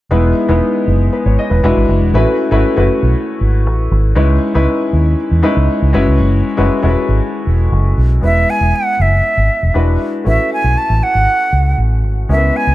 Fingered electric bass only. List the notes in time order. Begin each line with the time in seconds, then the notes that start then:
0.11 E1
0.49 E1
0.88 F#1
1.26 G#1
1.51 E1
1.64 E1
1.77 G#1
1.89 F#1
2.02 E1
2.14 A1
2.52 G#1
2.77 F#1
3.03 B1
3.41 G#1
3.66 A1
3.91 G#1
4.16 C#2
4.55 C#2
4.93 D#2
5.31 E2
5.57 C#2
5.82 C#2
5.95 F#1
6.08 C#2
6.20 F#1
6.58 F#1
6.84 E1
7.09 G#1
7.47 E1
7.72 F#1
7.98 B1
8.23 E1
8.61 E1
9.00 F#1
9.38 G#1
9.63 E1
9.75 E1
10.26 A1
10.64 B1
10.90 A1
11.15 G#1
11.53 C#2
11.78 A1
12.04 G#1
12.29 C#2
12.67 C#2